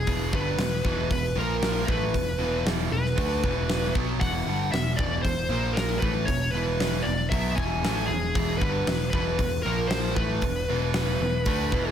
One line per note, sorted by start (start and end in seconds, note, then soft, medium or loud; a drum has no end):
0.00 0.34 G#4 medium
0.07 0.31 E1 medium
0.07 0.32 E2 medium
0.07 0.32 B2 loud
0.07 0.33 E3 loud
0.07 kick loud
0.07 open hi-hat medium
0.33 0.57 G1 medium
0.33 0.58 G2 medium
0.33 0.59 D3 medium
0.33 0.59 G3 medium
0.33 1.11 B4 medium
0.33 kick loud
0.57 0.82 E1 medium
0.57 0.79 E2 medium
0.57 0.80 B2 medium
0.57 snare medium
0.57 open hi-hat medium
0.84 1.09 E1 loud
0.84 1.09 E2 medium
0.84 1.09 B2 loud
0.84 1.10 E3 loud
0.84 kick loud
1.10 1.35 E1 medium
1.10 1.31 E2 medium
1.10 1.31 B2 medium
1.10 1.38 B4 medium
1.10 kick loud
1.10 open hi-hat medium
1.35 1.84 A#1 loud
1.35 1.87 A#2 medium
1.35 1.87 F3 medium
1.35 1.87 A#3 loud
1.35 1.90 A#4 medium
1.63 snare loud
1.63 open hi-hat medium
1.88 2.12 A1 medium
1.88 2.13 A2 medium
1.88 2.13 E3 loud
1.88 2.13 A3 loud
1.88 2.63 B4 medium
1.88 kick loud
2.13 2.38 E1 medium
2.13 2.34 E2 medium
2.13 2.35 B2 medium
2.13 kick medium
2.13 open hi-hat soft
2.39 2.87 E1 medium
2.39 2.90 E2 medium
2.39 2.91 B2 medium
2.39 2.91 E3 medium
2.66 snare loud
2.66 open hi-hat medium
2.91 3.15 E1 medium
2.91 3.12 E2 medium
2.91 3.12 B2 medium
2.91 3.91 B4 loud
3.06 snare soft
3.17 3.42 D2 medium
3.17 3.42 D3 loud
3.17 3.43 A3 loud
3.17 3.43 D4 loud
3.17 kick loud
3.17 open hi-hat medium
3.43 3.91 E1 loud
3.43 3.94 E2 medium
3.43 3.93 B2 medium
3.43 3.95 E3 medium
3.43 kick loud
3.69 snare loud
3.69 open hi-hat medium
3.94 4.19 B1 medium
3.94 4.19 B2 medium
3.94 4.20 F#3 loud
3.94 4.20 B3 loud
3.94 kick loud
4.19 4.45 E1 medium
4.19 4.45 E2 medium
4.19 4.45 B2 loud
4.19 4.46 E3 loud
4.19 4.72 F#5 loud
4.19 kick medium
4.19 open hi-hat medium
4.45 4.70 G1 medium
4.45 4.72 G2 medium
4.45 4.72 D3 medium
4.45 4.72 G3 medium
4.72 4.97 E1 medium
4.72 4.93 E2 medium
4.72 4.93 B2 medium
4.72 4.99 E5 medium
4.72 snare loud
4.72 open hi-hat medium
4.96 5.22 E1 medium
4.96 5.23 E2 medium
4.96 5.24 B2 medium
4.96 5.24 E3 medium
4.96 5.22 D5 medium
4.96 kick loud
5.22 5.48 E1 medium
5.22 5.45 E2 medium
5.22 5.45 B2 medium
5.22 5.77 C5 medium
5.22 kick medium
5.22 open hi-hat medium
5.49 5.98 A#1 loud
5.49 6.01 A#2 medium
5.49 6.01 F3 medium
5.49 6.02 A#3 medium
5.73 5.99 A#4 medium
5.73 snare loud
5.73 open hi-hat medium
5.99 6.26 A1 medium
5.99 6.27 A2 medium
5.99 6.27 E3 medium
5.99 6.27 A3 loud
5.99 6.27 B4 medium
5.99 kick loud
6.25 6.52 E1 medium
6.25 6.48 E2 medium
6.25 6.49 B2 medium
6.25 6.50 C#5 loud
6.25 kick medium
6.25 open hi-hat medium
6.51 7.01 E1 medium
6.51 7.04 E2 medium
6.51 7.04 B2 medium
6.51 7.05 E3 medium
6.51 7.06 B4 medium
6.80 snare loud
6.80 open hi-hat medium
7.03 7.30 E1 medium
7.03 7.26 E2 medium
7.03 7.26 B2 medium
7.03 7.29 D5 medium
7.30 7.56 B1 medium
7.30 7.55 B2 medium
7.30 7.56 F#3 loud
7.30 7.57 B3 loud
7.30 7.57 E5 loud
7.30 kick loud
7.30 open hi-hat medium
7.55 7.82 E1 loud
7.55 7.82 E2 medium
7.55 7.82 B2 medium
7.55 7.82 E3 medium
7.55 8.04 G#5 loud
7.55 kick loud
7.83 8.07 A1 medium
7.83 8.08 A2 medium
7.83 8.08 E3 medium
7.83 8.09 A3 loud
7.83 snare loud
7.83 open hi-hat medium
8.06 8.33 E1 medium
8.06 8.30 E2 medium
8.06 8.30 B2 medium
8.06 8.58 G#4 medium
8.34 8.59 E1 loud
8.34 8.60 E2 medium
8.34 8.60 B2 loud
8.34 8.60 E3 loud
8.34 kick loud
8.34 open hi-hat medium
8.58 8.85 G1 medium
8.58 8.86 G2 medium
8.58 8.86 D3 medium
8.58 9.08 B4 loud
8.58 kick loud
8.62 8.87 G3 loud
8.86 9.11 E1 medium
8.86 9.08 E2 medium
8.86 9.08 B2 medium
8.86 snare loud
8.86 open hi-hat medium
9.10 9.37 E1 loud
9.10 9.38 E2 medium
9.10 9.38 B2 medium
9.10 9.62 B4 medium
9.10 kick loud
9.15 9.39 E3 medium
9.39 9.63 E1 medium
9.39 9.60 E2 medium
9.39 9.60 B2 medium
9.39 kick loud
9.39 open hi-hat medium
9.62 10.13 A#1 loud
9.62 10.16 A#2 medium
9.62 10.16 F3 loud
9.62 10.17 A#3 loud
9.62 9.88 A#4 medium
9.88 10.16 C5 medium
9.88 snare loud
9.88 open hi-hat medium
10.16 10.41 A1 medium
10.16 10.42 A2 medium
10.16 10.42 E3 loud
10.16 10.42 A3 medium
10.16 11.91 B4 medium
10.16 kick loud
10.42 10.66 E1 medium
10.42 10.63 E2 medium
10.42 10.64 B2 medium
10.42 kick medium
10.42 open hi-hat medium
10.68 11.16 E1 medium
10.68 11.20 E2 medium
10.68 11.20 B2 medium
10.68 11.20 E3 medium
10.94 snare loud
10.94 open hi-hat medium
11.20 11.44 E1 medium
11.20 11.41 E2 medium
11.20 11.42 B2 medium
11.46 11.70 D2 medium
11.46 11.72 D3 medium
11.46 11.72 A3 loud
11.46 11.72 D4 loud
11.46 kick loud
11.46 open hi-hat medium
11.71 11.91 E1 medium
11.71 11.91 E2 medium
11.71 11.91 B2 medium
11.71 11.91 E3 loud
11.71 kick loud